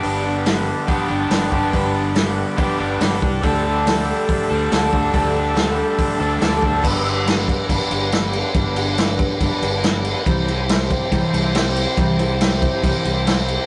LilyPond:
<<
  \new Staff \with { instrumentName = "Tonewheel organ" } { \time 4/4 \key g \major \tempo 4 = 141 <b d' g' b'>1~ | <b d' g' b'>1 | <a d' g' a'>1~ | <a d' g' a'>1 |
<b d' g' b'>1~ | <b d' g' b'>1 | <c' e' g' c''>1~ | <c' e' g' c''>1 | }
  \new Staff \with { instrumentName = "Steel-string acoustic guitar" } { \time 4/4 \key g \major <g d' g' b'>8 <d' g' b'>8 <g d' g' b'>4 <g d' g' b'>8 <d' g' b'>8 <g d' g' b'>8 <d' g' b'>8 | <g d' g' b'>8 <d' g' b'>8 <g d' g' b'>4 <g d' g' b'>8 <d' g' b'>8 <g d' g' b'>8 <d' g' b'>8 | <d g d' g' a'>8 <d' g' a'>8 <d g d' g' a'>4 <g d' g' a'>8 <d' g' a'>8 <d g d' g' a'>8 <d' g' a'>8 | <d g d' g' a'>8 <d' g' a'>8 <d g d' g' a'>4 <g d' g' a'>8 <d' g' a'>8 <d g d' g' a'>8 <d' g' a'>8 |
<g d' g' b'>8 <d' g' b'>8 <g d' g' b'>4 <g d' g' b'>4 <g d' g' b'>8 <d' g' b'>8 | <g d' g' b'>8 <d' g' b'>8 <g d' g' b'>8 <d' g' b'>8 <g d' g' b'>4 <g d' g' b'>4 | <c e g c' e' c''>8 <g c' e' c''>8 <g c' e' c''>4 <c e g c' e' c''>4 <g c' e' c''>4 | <c e g c' e' c''>8 <g c' e' c''>8 <g c' e' c''>8 <g c' e' c''>8 <c e g c' e' c''>4 <g c' e' c''>4 | }
  \new Staff \with { instrumentName = "Overdriven electric guitar" } { \time 4/4 \key g \major <g, d g b d' g'>2 <g, d g b d' g'>8 <g, d g b d' g'>4 <g, d g b d' g'>8~ | <g, d g b d' g'>2 <g, d g b d' g'>8 <g, d g b d' g'>4 r8 | <d g d' a'>2~ <d g d' a'>8 <d g d' a'>8 <d g d' a'>4 | <d g d' a'>2~ <d g d' a'>8 <d g d' a'>8 <d g d' a'>4 |
r1 | r1 | r1 | r1 | }
  \new Staff \with { instrumentName = "Fingered electric bass" } { \clef bass \time 4/4 \key g \major g,,2 r8 g,,8 g,,8 g,,8 | g,,2 r8 g,,8 g,,8 c,8 | d,2 r8 d,8 d,8 d,8 | d,2 r8 d,8 d,8 d,8 |
g,,2 g,,16 r16 g,,4. | g,,2 g,,16 r16 g,,4. | c,2 c,16 r16 c,4. | c,2 c,16 r16 c,4. | }
  \new DrumStaff \with { instrumentName = "Drums" } \drummode { \time 4/4 hho4 <hho sn>4 <hho bd>4 <hho sn>8 bd8 | <hho bd>4 <hho sn>4 <hho bd>4 <hho sn>8 bd8 | <hho bd>4 <hho sn>4 <hho bd>4 <hho sn>8 bd8 | <hho bd>4 <hho sn>4 <hho bd>4 <hho sn>8 bd8 |
<cymc bd>8 cymc8 <cymc sn>8 <cymc bd>8 <cymc bd>8 cymc8 <cymc sn>8 cymc8 | <cymc bd>8 cymc8 <cymc sn>8 <cymc bd>8 <cymc bd>8 cymc8 <cymc sn>8 cymc8 | <cymc bd>8 cymc8 <cymc sn>8 <cymc bd>8 <cymc bd>8 cymc8 <cymc sn>8 cymc8 | <cymc bd>8 cymc8 <cymc sn>8 <cymc bd>8 <cymc bd>8 cymc8 <cymc sn>8 cymc8 | }
>>